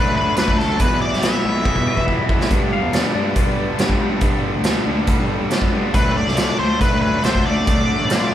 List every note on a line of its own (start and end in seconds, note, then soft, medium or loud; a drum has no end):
0.00 0.35 D3 medium
0.00 0.36 F#3 medium
0.00 0.37 A3 loud
0.00 0.38 D4 medium
0.00 0.15 B4 medium
0.05 0.24 D2 medium
0.16 0.35 B4 medium
0.37 0.66 D2 medium
0.37 0.57 D3 medium
0.37 0.58 F#3 medium
0.37 0.59 A3 medium
0.37 0.59 D4 medium
0.37 0.57 B4 medium
0.37 snare medium
0.37 closed hi-hat medium
0.48 kick medium
0.58 0.79 D3 medium
0.58 0.79 F#3 medium
0.58 0.79 A3 medium
0.58 0.80 D4 medium
0.58 0.80 A4 medium
0.58 snare soft
0.69 0.79 D2 medium
0.79 1.21 E2 medium
0.79 0.99 E2 medium
0.79 1.22 B2 medium
0.79 1.22 E3 medium
0.79 1.24 G3 medium
0.79 1.24 B3 medium
0.79 1.24 E4 medium
0.79 1.00 B4 medium
0.79 kick medium
0.79 closed hi-hat medium
1.02 1.23 D5 medium
1.12 1.32 B1 medium
1.12 snare soft
1.22 1.43 E2 medium
1.22 1.44 B2 medium
1.22 1.44 E3 medium
1.22 1.45 G3 medium
1.22 1.46 B3 medium
1.22 1.46 E4 medium
1.22 2.05 E5 medium
1.22 snare loud
1.22 closed hi-hat medium
1.44 1.73 B1 medium
1.44 1.65 E2 medium
1.44 1.65 B2 medium
1.44 1.65 E3 medium
1.44 1.67 G3 medium
1.44 1.67 B3 medium
1.44 1.67 E4 medium
1.65 2.06 E2 medium
1.65 2.07 B2 medium
1.65 2.07 E3 medium
1.65 2.08 G3 loud
1.65 2.09 B3 medium
1.65 2.09 E4 loud
1.65 kick medium
1.76 1.86 E2 medium
1.76 kick soft
1.87 2.70 E5 medium
1.97 2.17 E3 medium
1.97 kick medium
2.07 2.28 E2 medium
2.07 2.28 B2 medium
2.07 2.28 E3 medium
2.07 2.29 G3 medium
2.07 2.30 B3 medium
2.07 2.30 E4 medium
2.07 kick medium
2.29 2.50 E2 medium
2.29 2.39 E2 medium
2.29 2.50 B2 medium
2.29 2.50 E3 medium
2.29 2.51 G3 medium
2.29 2.52 B3 medium
2.29 2.51 E4 medium
2.29 kick medium
2.41 snare medium
2.51 2.93 G2 medium
2.51 2.80 G2 medium
2.51 2.93 D3 medium
2.51 2.93 G3 medium
2.51 2.94 B3 medium
2.51 2.95 D4 medium
2.51 kick loud
2.51 closed hi-hat medium
2.73 2.94 F5 medium
2.82 3.02 E2 medium
2.93 3.13 G2 medium
2.93 3.14 D3 medium
2.93 3.15 G3 medium
2.93 3.16 B3 medium
2.93 3.16 D4 medium
2.93 3.13 D5 medium
2.93 snare loud
2.93 closed hi-hat medium
3.14 3.35 G2 medium
3.14 3.34 G2 medium
3.14 3.35 D3 medium
3.14 3.35 G3 medium
3.14 3.36 B3 medium
3.14 3.37 D4 medium
3.14 3.36 D5 medium
3.36 3.77 G2 medium
3.36 3.78 D3 medium
3.36 3.78 G3 medium
3.36 3.79 B3 medium
3.36 3.80 D4 medium
3.36 4.20 D5 medium
3.36 kick medium
3.36 closed hi-hat medium
3.46 3.66 G2 medium
3.79 3.98 G2 medium
3.79 4.09 G2 medium
3.79 3.99 D3 medium
3.79 4.00 G3 medium
3.79 4.00 B3 medium
3.79 4.01 D4 medium
3.79 snare loud
3.79 closed hi-hat soft
3.89 kick medium
3.99 4.20 G2 medium
3.99 4.20 D3 medium
3.99 4.21 G3 medium
3.99 4.21 B3 medium
3.99 4.22 D4 medium
4.11 4.21 G2 medium
4.21 4.63 G2 medium
4.21 4.42 G2 medium
4.21 4.63 D3 medium
4.21 4.64 G3 medium
4.21 4.65 B3 medium
4.21 4.66 D4 loud
4.21 kick loud
4.21 closed hi-hat medium
4.55 4.74 D2 medium
4.64 4.84 G2 medium
4.64 4.85 D3 medium
4.64 4.86 G3 medium
4.64 4.86 B3 medium
4.64 4.87 D4 medium
4.64 snare loud
4.64 closed hi-hat medium
4.85 5.16 D2 medium
4.85 5.06 G2 medium
4.85 5.07 D3 medium
4.85 5.08 G3 medium
4.85 5.08 B3 medium
4.85 5.09 D4 medium
5.07 5.49 G2 medium
5.07 5.50 D3 medium
5.07 5.50 G3 medium
5.07 5.51 B3 medium
5.07 5.52 D4 medium
5.07 kick medium
5.07 closed hi-hat medium
5.19 5.29 G2 medium
5.40 5.60 G3 medium
5.51 5.71 G2 medium
5.51 5.72 D3 medium
5.51 5.72 G3 medium
5.51 5.72 B3 medium
5.51 5.74 D4 medium
5.51 snare medium
5.51 closed hi-hat medium
5.62 kick medium
5.72 5.93 G2 medium
5.72 5.83 G2 medium
5.72 5.92 D3 medium
5.72 5.93 G3 medium
5.72 5.94 B3 medium
5.72 5.95 D4 medium
5.93 6.24 D2 medium
5.93 6.36 D3 medium
5.93 6.37 F#3 medium
5.93 6.38 A3 medium
5.93 6.38 D4 medium
5.93 6.17 B4 medium
5.93 kick loud
5.93 closed hi-hat medium
6.17 6.57 D5 medium
6.27 6.47 C2 medium
6.27 snare soft
6.37 6.58 D3 medium
6.37 6.58 F#3 medium
6.37 6.59 A3 medium
6.37 6.59 D4 medium
6.37 snare loud
6.37 closed hi-hat medium
6.58 6.79 D2 medium
6.58 6.78 D3 medium
6.58 6.79 F#3 medium
6.58 6.79 A3 medium
6.58 6.80 D4 medium
6.58 6.81 C5 medium
6.79 7.22 D3 medium
6.79 7.23 F#3 medium
6.79 7.23 A3 loud
6.79 7.24 D4 loud
6.79 7.00 B4 medium
6.79 kick loud
6.79 closed hi-hat soft
6.91 7.11 D2 medium
7.02 7.24 B4 medium
7.24 7.53 D2 medium
7.24 7.44 D3 medium
7.24 7.45 F#3 medium
7.24 7.46 A3 medium
7.24 7.46 D4 medium
7.24 7.46 C5 medium
7.24 snare loud
7.24 closed hi-hat soft
7.35 kick medium
7.45 7.66 D3 medium
7.45 7.67 F#3 medium
7.45 7.68 A3 medium
7.45 7.68 D4 medium
7.45 8.34 D5 medium
7.56 7.66 D2 medium
7.67 7.87 D2 medium
7.67 8.09 D3 medium
7.67 8.10 F#3 medium
7.67 8.10 A3 medium
7.67 8.10 D4 medium
7.67 kick loud
7.67 closed hi-hat medium
8.00 8.19 A1 medium
8.10 8.30 D3 medium
8.10 8.31 F#3 medium
8.10 8.31 A3 medium
8.10 8.32 D4 medium
8.10 8.32 F4 medium
8.10 snare loud
8.10 closed hi-hat medium